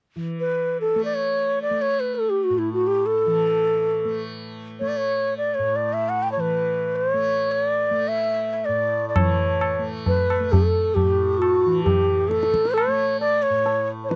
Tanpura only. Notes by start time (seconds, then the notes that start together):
0.16 E3
0.96 A3
1.71 A3
2.50 A2
3.26 E3
4.05 A3
4.81 A3
5.59 A2
6.36 E3
7.14 A3
7.91 A3
8.68 A2
9.16 E3
9.79 A3
10.40 A3
11.02 A2
11.66 E3
12.29 A3
12.88 A3
13.50 A2
14.10 E3